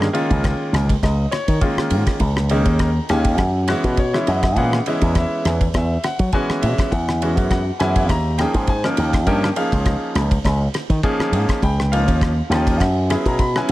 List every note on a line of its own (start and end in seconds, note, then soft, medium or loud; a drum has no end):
0.02 cross-stick medium
0.13 0.89 D#3 medium
0.13 0.89 G#3 medium
0.13 0.89 A#3 medium
0.13 0.89 C#4 medium
0.13 0.89 F4 medium
0.13 ride soft
0.30 0.53 C#2 medium
0.30 kick medium
0.30 ride medium
0.44 kick loud
0.44 cross-stick medium
0.44 ride medium
0.73 0.95 C#2 medium
0.73 cross-stick medium
0.73 ride medium
0.89 kick medium
0.89 ride medium
1.03 1.25 C#2 medium
1.03 1.32 D#5 medium
1.03 kick medium
1.03 cross-stick medium
1.03 ride medium
1.31 1.61 C#5 medium
1.31 cross-stick medium
1.31 ride medium
1.48 1.59 D#3 medium
1.48 kick medium
1.48 ride medium
1.61 2.17 D#3 medium
1.61 2.17 G#3 medium
1.61 2.17 A#3 medium
1.61 2.17 C#4 medium
1.61 2.18 F4 medium
1.61 kick medium
1.61 ride medium
1.77 muted slap bass stroke soft
1.77 cross-stick medium
1.90 2.03 G#2 medium
1.90 ride medium
2.07 muted slap bass stroke soft
2.07 kick medium
2.07 cross-stick medium
2.07 ride medium
2.20 2.66 C#2 medium
2.20 kick medium
2.20 ride medium
2.37 cross-stick medium
2.49 2.88 D#3 medium
2.49 2.88 G#3 medium
2.49 2.88 A#3 medium
2.49 2.88 C#4 medium
2.49 2.88 D#4 medium
2.49 ride medium
2.66 2.98 D#2 medium
2.66 kick medium
2.66 ride medium
2.79 3.09 A#5 medium
2.79 kick medium
2.79 cross-stick medium
2.79 ride medium
3.09 3.38 D#2 medium
3.09 3.39 D#3 medium
3.09 3.39 G#3 medium
3.09 3.39 A#3 medium
3.09 3.39 C#4 medium
3.09 3.39 G4 medium
3.09 3.28 G#5 medium
3.09 cross-stick medium
3.09 ride medium
3.25 kick medium
3.25 ride medium
3.38 3.73 F#2 medium
3.38 kick medium
3.38 cross-stick medium
3.38 ride medium
3.68 3.96 E3 medium
3.68 3.96 G#3 medium
3.68 3.96 B3 medium
3.68 3.96 C#4 medium
3.68 3.96 F#4 medium
3.68 cross-stick medium
3.68 ride medium
3.84 4.17 B2 medium
3.84 kick medium
3.84 ride medium
3.97 4.27 C#5 medium
3.97 kick medium
3.97 ride medium
4.13 4.41 E3 medium
4.13 4.41 G#3 medium
4.13 4.41 B3 medium
4.13 4.41 C#4 medium
4.13 4.41 E4 medium
4.13 cross-stick medium
4.27 4.56 F#2 medium
4.27 4.56 D#5 medium
4.27 ride medium
4.43 kick medium
4.43 cross-stick medium
4.43 ride medium
4.56 4.79 A#2 medium
4.56 4.77 E3 medium
4.56 4.76 G#3 medium
4.56 4.77 B3 medium
4.56 4.77 C#4 medium
4.56 4.77 G#4 medium
4.56 4.86 F#5 medium
4.56 kick medium
4.56 ride medium
4.73 cross-stick medium
4.86 5.61 E3 medium
4.86 5.61 G#3 medium
4.86 5.61 B3 medium
4.86 5.61 C#4 medium
4.86 5.61 E4 medium
4.86 5.16 D#5 medium
4.86 ride medium
5.02 5.24 E2 medium
5.02 kick medium
5.02 ride medium
5.15 5.46 E5 medium
5.15 kick loud
5.15 cross-stick medium
5.15 ride medium
5.45 5.67 E2 medium
5.45 cross-stick medium
5.45 ride medium
5.61 kick medium
5.61 ride medium
5.74 5.96 E2 medium
5.74 6.04 E5 medium
5.74 kick medium
5.74 cross-stick medium
5.74 ride medium
6.04 6.33 F#5 medium
6.04 cross-stick medium
6.04 ride medium
6.19 6.30 F#3 medium
6.19 kick medium
6.19 ride medium
6.33 6.89 E3 medium
6.33 6.89 G#3 medium
6.33 6.89 B3 medium
6.33 6.89 C#4 medium
6.33 6.89 F#4 medium
6.33 6.62 G#5 medium
6.33 kick medium
6.33 ride medium
6.49 muted slap bass stroke soft
6.49 cross-stick medium
6.62 6.75 B2 medium
6.62 6.91 E5 medium
6.62 ride medium
6.78 muted slap bass stroke soft
6.78 kick medium
6.78 cross-stick medium
6.78 ride medium
6.91 7.37 E2 medium
6.91 7.20 F#5 medium
6.91 kick medium
6.91 ride medium
7.09 cross-stick medium
7.22 7.59 E3 medium
7.22 7.59 G#3 medium
7.22 7.59 B3 medium
7.22 7.59 C#4 medium
7.22 7.59 F#4 medium
7.22 ride medium
7.37 7.70 F#2 medium
7.37 kick medium
7.37 ride medium
7.51 7.79 F#5 medium
7.51 kick medium
7.51 cross-stick medium
7.51 ride medium
7.80 8.09 F#2 medium
7.80 8.10 E3 medium
7.80 8.10 G#3 medium
7.80 8.10 B3 medium
7.80 8.10 C#4 medium
7.80 8.10 E4 medium
7.80 8.09 G#5 medium
7.80 cross-stick medium
7.80 ride medium
7.96 kick medium
7.96 ride medium
8.09 8.44 D#2 medium
8.09 8.38 A#5 medium
8.09 kick medium
8.09 cross-stick medium
8.09 ride medium
8.38 8.67 F3 medium
8.38 8.67 A#3 medium
8.38 8.67 C#4 medium
8.38 8.67 D#4 medium
8.38 8.67 G#4 medium
8.38 8.67 G5 medium
8.38 cross-stick medium
8.38 ride medium
8.54 8.87 G#2 medium
8.54 kick medium
8.54 ride medium
8.67 8.87 G#5 medium
8.67 kick medium
8.67 ride medium
8.84 9.12 F3 medium
8.84 9.12 A#3 medium
8.84 9.12 C#4 medium
8.84 9.12 D#4 medium
8.84 9.12 A#4 medium
8.84 cross-stick medium
8.97 9.27 D#2 medium
8.97 ride medium
9.13 kick medium
9.13 cross-stick medium
9.13 ride medium
9.27 9.49 G2 medium
9.27 9.46 F3 medium
9.27 9.46 A#3 medium
9.27 9.46 C#4 medium
9.27 9.46 D#4 medium
9.27 9.46 A#4 medium
9.27 9.56 G5 medium
9.27 kick medium
9.27 ride medium
9.44 cross-stick medium
9.56 10.31 F3 medium
9.56 10.31 A#3 medium
9.56 10.31 C#4 medium
9.56 10.31 D#4 medium
9.56 10.31 G#4 medium
9.56 10.12 F5 medium
9.56 ride medium
9.72 9.95 C#2 medium
9.72 kick medium
9.72 ride medium
9.86 kick loud
9.86 cross-stick medium
9.86 ride medium
10.15 10.37 C#2 medium
10.15 cross-stick medium
10.15 ride medium
10.31 kick medium
10.31 ride medium
10.44 10.67 C#2 medium
10.44 kick medium
10.44 cross-stick medium
10.44 ride medium
10.74 cross-stick medium
10.74 ride medium
10.89 11.00 D#3 medium
10.89 kick medium
10.89 ride medium
11.03 11.59 F3 medium
11.03 11.59 A#3 medium
11.03 11.59 C#4 medium
11.03 11.59 D#4 medium
11.03 11.59 G#4 loud
11.03 kick loud
11.03 ride soft
11.19 muted slap bass stroke soft
11.19 cross-stick medium
11.32 11.44 G#2 medium
11.32 ride medium
11.49 kick medium
11.49 cross-stick medium
11.49 ride medium
11.62 12.08 C#2 medium
11.62 11.92 G5 medium
11.62 kick medium
11.62 ride medium
11.80 cross-stick medium
11.92 12.29 F3 medium
11.92 12.30 A#3 medium
11.92 12.30 C#4 medium
11.92 12.30 D#4 medium
11.92 12.30 F4 medium
11.92 12.47 F5 medium
11.92 ride medium
12.08 12.40 D#2 medium
12.08 kick medium
12.08 ride medium
12.21 kick loud
12.21 cross-stick medium
12.21 ride medium
12.50 12.80 D#2 medium
12.50 12.80 F3 medium
12.50 12.80 A#3 medium
12.50 12.80 C#4 medium
12.50 12.80 D#4 medium
12.50 12.80 F4 medium
12.50 cross-stick medium
12.50 ride medium
12.67 kick medium
12.67 ride medium
12.80 13.14 F#2 medium
12.80 kick medium
12.80 cross-stick medium
12.80 ride medium
13.10 13.37 F#3 medium
13.10 13.37 B3 medium
13.10 13.37 C#4 medium
13.10 13.37 E4 medium
13.10 13.37 G#4 medium
13.10 cross-stick medium
13.10 ride medium
13.26 13.58 B2 medium
13.26 13.39 A#5 medium
13.26 kick medium
13.26 ride medium
13.39 13.55 B5 medium
13.39 kick loud
13.39 ride medium
13.56 13.72 F#3 medium
13.56 13.72 B3 medium
13.56 13.72 C#4 medium
13.56 13.72 E4 medium
13.56 13.72 B4 medium
13.56 13.69 G#5 medium
13.56 cross-stick medium